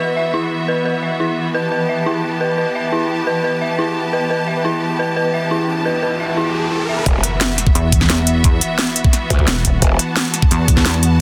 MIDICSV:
0, 0, Header, 1, 8, 480
1, 0, Start_track
1, 0, Key_signature, 1, "minor"
1, 0, Tempo, 344828
1, 230, Time_signature, 4, 2, 24, 8
1, 15604, End_track
2, 0, Start_track
2, 0, Title_t, "Synth bell"
2, 0, Program_c, 0, 98
2, 229, Note_on_c, 0, 76, 80
2, 350, Note_off_c, 0, 76, 0
2, 468, Note_on_c, 0, 64, 94
2, 589, Note_off_c, 0, 64, 0
2, 950, Note_on_c, 0, 71, 98
2, 1070, Note_off_c, 0, 71, 0
2, 1189, Note_on_c, 0, 71, 97
2, 1262, Note_off_c, 0, 71, 0
2, 1430, Note_on_c, 0, 76, 72
2, 1550, Note_off_c, 0, 76, 0
2, 1670, Note_on_c, 0, 64, 93
2, 1790, Note_off_c, 0, 64, 0
2, 2150, Note_on_c, 0, 71, 99
2, 2270, Note_off_c, 0, 71, 0
2, 2390, Note_on_c, 0, 71, 95
2, 2462, Note_off_c, 0, 71, 0
2, 2630, Note_on_c, 0, 76, 74
2, 2750, Note_off_c, 0, 76, 0
2, 2871, Note_on_c, 0, 64, 99
2, 2990, Note_off_c, 0, 64, 0
2, 3350, Note_on_c, 0, 71, 96
2, 3470, Note_off_c, 0, 71, 0
2, 3591, Note_on_c, 0, 71, 94
2, 3662, Note_off_c, 0, 71, 0
2, 3831, Note_on_c, 0, 76, 75
2, 3950, Note_off_c, 0, 76, 0
2, 4070, Note_on_c, 0, 64, 97
2, 4190, Note_off_c, 0, 64, 0
2, 4551, Note_on_c, 0, 71, 97
2, 4670, Note_off_c, 0, 71, 0
2, 4790, Note_on_c, 0, 71, 101
2, 4862, Note_off_c, 0, 71, 0
2, 5030, Note_on_c, 0, 76, 82
2, 5150, Note_off_c, 0, 76, 0
2, 5270, Note_on_c, 0, 64, 100
2, 5390, Note_off_c, 0, 64, 0
2, 5749, Note_on_c, 0, 71, 98
2, 5870, Note_off_c, 0, 71, 0
2, 5990, Note_on_c, 0, 71, 98
2, 6062, Note_off_c, 0, 71, 0
2, 6230, Note_on_c, 0, 76, 74
2, 6350, Note_off_c, 0, 76, 0
2, 6469, Note_on_c, 0, 64, 98
2, 6589, Note_off_c, 0, 64, 0
2, 6949, Note_on_c, 0, 71, 98
2, 7069, Note_off_c, 0, 71, 0
2, 7189, Note_on_c, 0, 71, 99
2, 7262, Note_off_c, 0, 71, 0
2, 7429, Note_on_c, 0, 76, 74
2, 7550, Note_off_c, 0, 76, 0
2, 7669, Note_on_c, 0, 64, 101
2, 7789, Note_off_c, 0, 64, 0
2, 8149, Note_on_c, 0, 71, 95
2, 8270, Note_off_c, 0, 71, 0
2, 8390, Note_on_c, 0, 71, 99
2, 8462, Note_off_c, 0, 71, 0
2, 8630, Note_on_c, 0, 76, 76
2, 8750, Note_off_c, 0, 76, 0
2, 8870, Note_on_c, 0, 64, 97
2, 8990, Note_off_c, 0, 64, 0
2, 9350, Note_on_c, 0, 64, 74
2, 9470, Note_off_c, 0, 64, 0
2, 9590, Note_on_c, 0, 76, 74
2, 9710, Note_off_c, 0, 76, 0
2, 15604, End_track
3, 0, Start_track
3, 0, Title_t, "String section"
3, 0, Program_c, 1, 48
3, 0, Note_on_c, 1, 52, 70
3, 0, Note_on_c, 1, 59, 65
3, 0, Note_on_c, 1, 66, 66
3, 0, Note_on_c, 1, 76, 83
3, 2094, Note_off_c, 1, 66, 0
3, 2118, Note_off_c, 1, 76, 0
3, 2152, Note_on_c, 1, 67, 68
3, 2152, Note_on_c, 1, 81, 80
3, 9774, Note_off_c, 1, 59, 0
3, 9775, Note_off_c, 1, 52, 0
3, 9775, Note_off_c, 1, 67, 0
3, 9799, Note_off_c, 1, 81, 0
3, 9830, Note_on_c, 1, 52, 76
3, 9830, Note_on_c, 1, 59, 71
3, 9830, Note_on_c, 1, 76, 86
3, 9831, Note_on_c, 1, 66, 71
3, 13655, Note_off_c, 1, 76, 0
3, 13672, Note_on_c, 1, 81, 86
3, 15604, Note_off_c, 1, 52, 0
3, 15604, Note_off_c, 1, 59, 0
3, 15604, Note_off_c, 1, 66, 0
3, 15604, Note_off_c, 1, 81, 0
3, 15604, End_track
4, 0, Start_track
4, 0, Title_t, "Wobble bass"
4, 0, Program_c, 2, 39
4, 10790, Note_on_c, 2, 40, 95
4, 11970, Note_off_c, 2, 40, 0
4, 13191, Note_on_c, 2, 28, 98
4, 13651, Note_off_c, 2, 28, 0
4, 14631, Note_on_c, 2, 40, 96
4, 15604, Note_off_c, 2, 40, 0
4, 15604, End_track
5, 0, Start_track
5, 0, Title_t, "Wobble bass"
5, 0, Program_c, 3, 39
5, 9830, Note_on_c, 3, 28, 95
5, 10051, Note_off_c, 3, 28, 0
5, 12950, Note_on_c, 3, 38, 98
5, 13171, Note_off_c, 3, 38, 0
5, 13671, Note_on_c, 3, 28, 96
5, 13891, Note_off_c, 3, 28, 0
5, 15604, End_track
6, 0, Start_track
6, 0, Title_t, "Impact"
6, 0, Program_c, 4, 103
6, 9830, Note_on_c, 4, 60, 74
6, 11750, Note_off_c, 4, 60, 0
6, 15604, End_track
7, 0, Start_track
7, 0, Title_t, "Riser"
7, 0, Program_c, 5, 103
7, 5990, Note_on_c, 5, 60, 72
7, 9830, Note_off_c, 5, 60, 0
7, 15604, End_track
8, 0, Start_track
8, 0, Title_t, "Drums"
8, 9830, Note_on_c, 9, 36, 120
8, 9830, Note_on_c, 9, 42, 87
8, 9969, Note_off_c, 9, 36, 0
8, 9969, Note_off_c, 9, 42, 0
8, 10071, Note_on_c, 9, 42, 100
8, 10210, Note_off_c, 9, 42, 0
8, 10311, Note_on_c, 9, 38, 121
8, 10311, Note_on_c, 9, 42, 84
8, 10451, Note_off_c, 9, 38, 0
8, 10451, Note_off_c, 9, 42, 0
8, 10551, Note_on_c, 9, 40, 35
8, 10551, Note_on_c, 9, 42, 97
8, 10670, Note_on_c, 9, 36, 111
8, 10691, Note_off_c, 9, 40, 0
8, 10691, Note_off_c, 9, 42, 0
8, 10791, Note_on_c, 9, 42, 85
8, 10809, Note_off_c, 9, 36, 0
8, 10930, Note_off_c, 9, 42, 0
8, 11030, Note_on_c, 9, 36, 108
8, 11031, Note_on_c, 9, 42, 99
8, 11150, Note_off_c, 9, 36, 0
8, 11150, Note_on_c, 9, 36, 64
8, 11151, Note_on_c, 9, 38, 38
8, 11151, Note_on_c, 9, 40, 52
8, 11170, Note_off_c, 9, 42, 0
8, 11269, Note_off_c, 9, 38, 0
8, 11269, Note_on_c, 9, 38, 120
8, 11269, Note_on_c, 9, 42, 85
8, 11289, Note_off_c, 9, 36, 0
8, 11290, Note_off_c, 9, 40, 0
8, 11389, Note_on_c, 9, 40, 60
8, 11409, Note_off_c, 9, 38, 0
8, 11409, Note_off_c, 9, 42, 0
8, 11509, Note_on_c, 9, 42, 101
8, 11529, Note_off_c, 9, 40, 0
8, 11649, Note_off_c, 9, 42, 0
8, 11750, Note_on_c, 9, 36, 127
8, 11750, Note_on_c, 9, 42, 83
8, 11889, Note_off_c, 9, 42, 0
8, 11890, Note_off_c, 9, 36, 0
8, 11989, Note_on_c, 9, 42, 94
8, 12129, Note_off_c, 9, 42, 0
8, 12229, Note_on_c, 9, 38, 127
8, 12229, Note_on_c, 9, 42, 81
8, 12368, Note_off_c, 9, 38, 0
8, 12368, Note_off_c, 9, 42, 0
8, 12470, Note_on_c, 9, 42, 95
8, 12590, Note_on_c, 9, 36, 116
8, 12609, Note_off_c, 9, 42, 0
8, 12710, Note_on_c, 9, 40, 38
8, 12710, Note_on_c, 9, 42, 84
8, 12729, Note_off_c, 9, 36, 0
8, 12849, Note_off_c, 9, 40, 0
8, 12849, Note_off_c, 9, 42, 0
8, 12950, Note_on_c, 9, 36, 111
8, 12950, Note_on_c, 9, 42, 94
8, 13070, Note_off_c, 9, 36, 0
8, 13070, Note_on_c, 9, 36, 65
8, 13090, Note_off_c, 9, 42, 0
8, 13190, Note_on_c, 9, 38, 125
8, 13190, Note_on_c, 9, 42, 82
8, 13210, Note_off_c, 9, 36, 0
8, 13329, Note_off_c, 9, 38, 0
8, 13329, Note_off_c, 9, 42, 0
8, 13429, Note_on_c, 9, 42, 95
8, 13430, Note_on_c, 9, 36, 66
8, 13569, Note_off_c, 9, 42, 0
8, 13570, Note_off_c, 9, 36, 0
8, 13669, Note_on_c, 9, 42, 79
8, 13670, Note_on_c, 9, 36, 126
8, 13808, Note_off_c, 9, 42, 0
8, 13810, Note_off_c, 9, 36, 0
8, 13909, Note_on_c, 9, 42, 94
8, 14048, Note_off_c, 9, 42, 0
8, 14149, Note_on_c, 9, 38, 127
8, 14149, Note_on_c, 9, 42, 79
8, 14289, Note_off_c, 9, 38, 0
8, 14289, Note_off_c, 9, 42, 0
8, 14389, Note_on_c, 9, 40, 35
8, 14389, Note_on_c, 9, 42, 91
8, 14510, Note_on_c, 9, 36, 114
8, 14528, Note_off_c, 9, 40, 0
8, 14528, Note_off_c, 9, 42, 0
8, 14630, Note_on_c, 9, 42, 80
8, 14650, Note_off_c, 9, 36, 0
8, 14769, Note_off_c, 9, 42, 0
8, 14869, Note_on_c, 9, 42, 90
8, 14870, Note_on_c, 9, 36, 111
8, 14990, Note_off_c, 9, 36, 0
8, 14990, Note_on_c, 9, 36, 65
8, 14990, Note_on_c, 9, 38, 40
8, 14990, Note_on_c, 9, 40, 51
8, 15008, Note_off_c, 9, 42, 0
8, 15110, Note_off_c, 9, 38, 0
8, 15110, Note_on_c, 9, 38, 127
8, 15110, Note_on_c, 9, 42, 78
8, 15129, Note_off_c, 9, 40, 0
8, 15130, Note_off_c, 9, 36, 0
8, 15230, Note_on_c, 9, 40, 60
8, 15249, Note_off_c, 9, 38, 0
8, 15249, Note_off_c, 9, 42, 0
8, 15351, Note_on_c, 9, 42, 94
8, 15369, Note_off_c, 9, 40, 0
8, 15490, Note_off_c, 9, 42, 0
8, 15604, End_track
0, 0, End_of_file